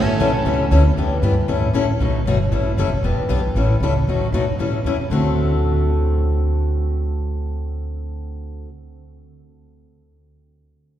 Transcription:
Already playing: A1 E3 G3 C#4 E4 A4
0.19 B1 E3 G3 C#4 E4 A4
0.45 C#2 E3 G3 C#4 E4 A4
0.71 D2 E3 G3 C#4 E4 A4
0.97 E2 E3 B3 D4 G4
1.22 G2 E3 B3 D4 G4
1.48 A2 E3 G3 C#4 E4 A4
1.73 A1 E3 G3 C#4 E4 A4
1.99 B1 B2 F#3 A3 D#4 F#4
2.26 G1 B2 F#3 A3 D#4 F#4
2.52 A1 E3 G3 C#4 E4 A4
2.77 F#1 E3 G3 C#4 E4 A4
3.03 E1 E3 B3 D4 G4
3.18 muted upright bass stroke
3.28 B1 E3 B3 D4 G4
3.55 A1 E3 G3 C#4 E4 A4
3.80 C#2 E3 G3 C#4 E4 A4
4.07 D#2 B2 F#3 A3 D#4 F#4
4.32 F#2 B2 F#3 A3 D#4 F#4
4.59 A2 E3 G3 C#4 E4 A4
4.84 E2 E3 G3 C#4 E4 A4
5.10 D2 D3 A3 C4 F#4 A4

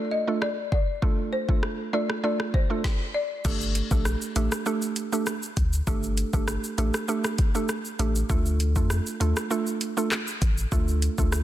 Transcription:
Already playing: A3 D4 F4 A4
0.11 D#5
0.27 A3 D4 F4 A4
0.42 D5, cross-stick
0.72 D5, kick
1.02 A3 D4 F4 A4, kick
1.33 C5
1.49 A3 D4 F4 A4, kick
1.63 cross-stick
1.93 A3 D4 F4 A4 D5
2.10 cross-stick
2.23 A3 D4 F4 A4 D5
2.40 cross-stick
2.54 C5, kick
2.70 A3 D4 F4 A4
2.84 kick, snare
3.14 D5
3.45 G1 A3 D4 G4 A4, kick, crash, shaker
3.61 shaker
3.75 closed hi-hat, shaker
3.91 A#1 A3 D4 G4 A4, kick, shaker
4.05 cross-stick, shaker
4.22 shaker
4.36 A1 A3 D4 G4 A4, closed hi-hat, shaker
4.52 cross-stick, shaker
4.66 A3 D4 G4 A4, shaker
4.82 shaker
4.96 closed hi-hat, shaker
5.12 A3 D4 G4 A4, shaker
5.27 cross-stick, shaker
5.43 shaker
5.57 D2, kick, closed hi-hat, shaker
5.73 shaker
5.87 G1 A3 D4 G4 A4, kick, shaker
6.03 shaker
6.17 closed hi-hat, shaker
6.33 G1 A3 D4 G4 A4, kick, shaker
6.48 cross-stick, shaker
6.64 shaker
6.78 A1 A3 D4 G4 A4, closed hi-hat, shaker
6.94 cross-stick, shaker
7.08 A3 D4 G4 A4, shaker
7.24 cross-stick, shaker
7.38 kick, closed hi-hat, shaker
7.55 A3 D4 G4 A4, shaker
7.69 cross-stick, shaker
7.85 shaker
7.99 A1 A3 D4 G4 A4, closed hi-hat, shaker
8.15 shaker
8.29 D2 A3 D4 F4 A4, kick, shaker
8.46 shaker
8.60 closed hi-hat, shaker
8.76 F2 A3 D4 F4 A4, kick, shaker
8.90 cross-stick, shaker
9.06 shaker
9.20 D#2 A3 D4 F4 A4, closed hi-hat, shaker
9.37 cross-stick, shaker
9.50 A3 D4 F4 A4, shaker
9.67 shaker
9.81 closed hi-hat, shaker
9.97 A3 D4 F4 A4, shaker
10.11 cross-stick, clap, shaker
10.27 shaker
10.42 A1, kick, closed hi-hat, shaker
10.58 shaker
10.72 D2 A3 D4 F4 A4, kick, shaker
10.88 shaker
11.02 closed hi-hat, shaker
11.18 D2 A3 D4 F4 A4, kick, shaker
11.32 cross-stick, shaker

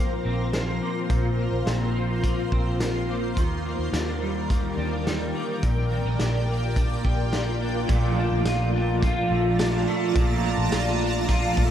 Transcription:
Already playing: A#1 A#2 F3 A#3 C4 F4 A#4 C5 A#5
0.25 A#1 C4
0.53 F3, snare, closed hi-hat
0.82 A#3
1.09 A#1 A#2 C6, kick, closed hi-hat
1.38 A#3
1.52 A#1
1.66 A#1 C4, snare, closed hi-hat
1.95 F3
2.23 A#3, kick, closed hi-hat
2.52 A#1 C4, kick
2.80 F3, snare, closed hi-hat
3.09 A#3
3.36 D#2 D#3 A#4 D5 G5, kick, closed hi-hat
3.65 A#3
3.79 D#2
3.92 D#2 D4, snare, closed hi-hat
4.22 G3
4.50 A#3, kick, closed hi-hat
4.77 D#2 D4
5.06 G3, snare, closed hi-hat
5.35 A#3
5.63 A#1 A#2 F4, kick, closed hi-hat
5.91 C4
6.05 A#1 D4
6.19 A#1 G4, snare, closed hi-hat
6.49 A#3
6.76 D4, kick, closed hi-hat
7.05 A#1 G4, kick
7.33 A#3, snare, closed hi-hat
7.61 D4
7.86 A#1 A#2 F3 F4 D5 A5 A#5, kick, closed hi-hat
7.90 A3 D4 F4
8.18 D4
8.32 A#1
8.45 A#1 F4, snare, closed hi-hat, tambourine
8.74 D4
9.01 F3 A3 D4 F4, kick, closed hi-hat
9.06 F4
9.31 A#1 A3
9.57 F3 A3 D4, snare, closed hi-hat, tambourine
9.63 F4
9.87 A3
10.13 A#1 A#2 F3, kick, closed hi-hat
10.17 A3 D4 F4
10.44 D4
10.58 A#1
10.72 A#1 F4, snare, closed hi-hat, tambourine
11.01 D4
11.28 F3 A3 D4 F4, kick, closed hi-hat
11.33 F4
11.57 A#1 A3, kick

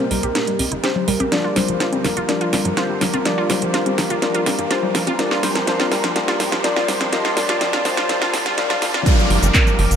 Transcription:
Already playing: G3 A#3 C4 D#4 G4 A#4 C5 D#5 A#5 C6, riser
0.11 C2 G3 A#4, open hi-hat
0.23 C2 G4, closed hi-hat
0.35 A#3, snare, closed hi-hat
0.47 G3, closed hi-hat
0.59 C2, open hi-hat, high conga
0.72 G1 D#4, closed hi-hat
0.84 G4 C5, snare, closed hi-hat
0.96 low conga
1.08 C2 G3 A#4, open hi-hat
1.20 C2 G4, closed hi-hat, high conga
1.32 F3 G3 A#3 D4 F4 A#4 D5 F5 D6, snare, closed hi-hat
1.44 F4
1.56 G1 G3 C5, snare, open hi-hat, low conga
1.68 G1 F3, closed hi-hat
1.80 F4, snare, closed hi-hat
1.93 G3, closed hi-hat, high conga
2.04 G1 F3 A#4, snare, open hi-hat
2.17 G1 F4, closed hi-hat
2.29 F3 G3 A#3 D4 F4 A#4, snare, closed hi-hat
2.41 F4, closed hi-hat
2.53 G1 G3, snare, open hi-hat, high conga
2.65 G2 F3, closed hi-hat
2.77 F4 C5, snare, closed hi-hat
2.89 G3
3.01 G1 F3 A#4, snare, open hi-hat, low conga
3.14 G1 F4, closed hi-hat, high conga
3.25 F3 G3 A#3 D4 F4 A#4 D5, snare, closed hi-hat
3.38 F4
3.50 G1 G3 C5, snare, open hi-hat, low conga
3.62 G1 F3, closed hi-hat
3.74 F4, snare, closed hi-hat
3.86 G3, closed hi-hat, high conga
3.98 G1 F3 A#4, snare, open hi-hat
4.10 G1 F4, closed hi-hat
4.22 F3 G3 A#3 D4 F4 A#4, snare, closed hi-hat
4.34 F4, closed hi-hat
4.46 G1 G3, snare, open hi-hat, high conga
4.59 G2 F3, closed hi-hat
4.71 F4 C5, snare, closed hi-hat
4.83 G3, low conga
4.95 G1 F3 A#4, snare, open hi-hat
5.07 G1 F4, closed hi-hat, high conga
5.19 F3 G3 A#3 D4 F4 G4 A#4 D5 C6, snare, closed hi-hat
5.31 F4, snare
5.43 C2 G3 C5, snare, open hi-hat, low conga
5.55 C2 F3, snare, closed hi-hat
5.67 F3 G3 A#3 D4 F4 A#4, snare, closed hi-hat
5.80 F4, snare, closed hi-hat, high conga
5.92 C2 G3 A#4, snare, open hi-hat
6.04 C2 F3, snare, closed hi-hat
6.16 F3 G3 A#3 D4 F4 A#4, snare, closed hi-hat
6.28 F4, snare, closed hi-hat
6.40 C2 G3, snare, open hi-hat, high conga
6.52 G1 F3, snare, closed hi-hat
6.64 F3 G3 A#3 D4 F4 A#4 D5, snare, closed hi-hat
6.76 F4, snare
6.88 C2 G3 C5, snare, open hi-hat, low conga
7.01 C2 F3, snare, closed hi-hat, high conga
7.12 F3 G3 A#3 D4 F4 A#4 D#5 A5, snare, closed hi-hat
7.25 F4, snare, closed hi-hat
7.37 C2 F3 G3 A#3 D4 F4 A#4 D5, snare, open hi-hat, low conga
7.49 C2 F4, snare, closed hi-hat
7.61 F3 G3 A#3 D4 F4 A#4, snare, closed hi-hat
7.73 F4, snare, closed hi-hat, high conga
7.85 C2 F3 G3 A#3 D4 F4 A#4 C5, snare, open hi-hat
7.97 C2 F4, snare, closed hi-hat
8.09 F3 G3 A#3 D4 F4 A#4, snare, closed hi-hat
8.22 F4, snare, closed hi-hat
8.34 C2 F3 G3 A#3 D4 F4 A#4, snare, open hi-hat, high conga
8.46 G1 F4, snare, closed hi-hat
8.58 F3 G3 A#3 D4 F4 A#4, snare, closed hi-hat
8.70 F4, snare, closed hi-hat, low conga
8.82 C2 F3 G3 A#3 D4 F4 A#4, snare, open hi-hat
8.94 G1 F4, snare, closed hi-hat, high conga
9.06 F3 G3 A#3 D4 F4 G4 A#4 F5 A#5 D6, kick, closed hi-hat, crash, downlifter, shaker
9.18 low conga, shaker
9.30 G1 F3, open hi-hat
9.43 G1 F3, closed hi-hat, shaker
9.54 A#4, kick, clap, closed hi-hat, high conga, shaker
9.67 F3, closed hi-hat, low conga, shaker
9.79 G1 F3, open hi-hat
9.91 G1, closed hi-hat, shaker

